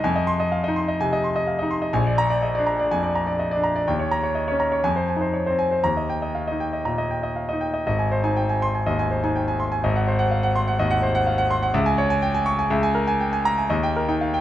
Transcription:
0.04 F2 G#5
0.16 D#5
0.27 C6
0.40 D#5
0.52 F5
0.64 D#5
0.68 D#4
0.76 C6
0.88 D#5
1.00 C3 G#5
1.13 D#5
1.24 C6
1.36 D#5
1.47 F5
1.59 D#4 D#5
1.71 C6
1.82 D#5
1.93 A#1 G#5
2.06 D5
2.18 A#5
2.30 D5
2.42 D#5
2.55 D4 D5
2.67 A#5
2.79 D5
2.91 F2 G#5
3.03 D5
3.15 A#5
3.27 D5
3.39 D#5
3.51 D5
3.56 D4
3.64 A#5
3.76 D5
3.87 D#2 G5
3.99 C#5
4.11 A#5
4.23 C#5
4.35 D#5
4.48 C#4 C#5
4.60 A#5
4.72 C#5
4.84 F2 G#5
4.96 C5
5.09 G#5
5.17 D#4
5.21 C5
5.34 C#5
5.46 C4 C5
5.59 G#5
5.71 C5
5.84 D#2 A#5
5.97 D#5
6.10 G5
6.22 D#5
6.35 F5
6.47 D#5
6.52 D#4
6.60 G5
6.73 D#5
6.85 A#2 A#5
6.98 D#5
7.11 G5
7.23 D#5
7.36 F5
7.49 D#5
7.53 D#4
7.61 G5
7.74 D#5
7.87 G#1 D#5
7.99 G#5
8.12 C5
8.24 D#4 G#5
8.36 G5
8.49 G#5
8.62 C6
8.75 G#5
8.86 D#2 D#5
8.99 G#5
9.11 C5
9.24 D#4 G#5
9.36 G5
9.48 G#5
9.60 C6
9.72 G#5
9.84 G#1 D#5
9.96 F#5
10.08 C5
10.19 F#5
10.31 F5
10.43 F#5
10.56 C6
10.68 F#5
10.79 D#2 D#5
10.91 F#5
11.02 C5
11.15 F#5
11.27 F5
11.38 F#5
11.51 C6
11.63 F#5
11.74 C#2 E5
11.86 G#5
11.98 C#5
12.10 G#5
12.22 G5
12.34 G#5
12.46 C#6
12.59 G#5
12.70 C#2 E5
12.83 G#5
12.95 A#4
13.07 G#5
13.20 G5
13.33 G#5
13.45 A#5
13.58 G#5
13.70 D#2 D#5
13.83 G5
13.96 A#4
14.08 D#4 G5
14.21 F5
14.34 G5

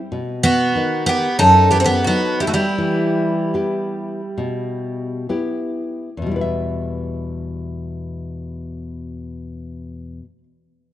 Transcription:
0.12 B2
0.43 B3 F#4
0.75 D#3 B3 D#4
1.06 B3 G4
1.39 F#2 D#4 A4
1.71 B3 G4
1.80 C4 A4
1.84 B3 G4
2.04 F#3 B3 D#4 F#4
2.40 G3 E4
2.47 A3 F#4
2.54 G3 E4
2.78 E3
3.54 B3 E4 G4
4.38 B2
5.29 B3 E4 G4
6.17 E2
6.22 B2
6.26 G3
6.31 E4
6.36 B4
6.41 E5

